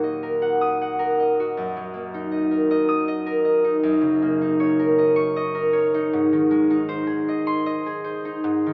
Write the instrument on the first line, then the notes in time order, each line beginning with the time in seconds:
harp
Already playing: D#2 A#2 F#3 A#3 F#4 A#4 F#5
0.03 D#5
0.23 A#4
0.42 F#5
0.61 D#6
0.81 F#5
0.99 A#4
1.20 D#5
1.40 F#4
1.57 F#2
1.76 F#3
1.94 A#3
2.14 D#4
2.32 D#5
2.51 A#4
2.71 D#5
2.89 D#6
3.08 D#5
3.26 A#4
3.45 D#5
3.64 D#4
3.83 F#2
4.01 C#3
4.22 A#3
4.42 D#4
4.60 C#5
4.79 A#4
4.98 D#5
5.16 C#6
5.36 D#5
5.55 A#4
5.73 C#5
5.94 D#4
6.13 G#2
6.33 D#3
6.51 G#3
6.70 D#4
6.89 C5
7.07 G#4
7.28 D#5
7.47 C6
7.66 D#5
7.86 G#4
8.04 C5
8.25 D#4
8.44 G#2
8.66 D#3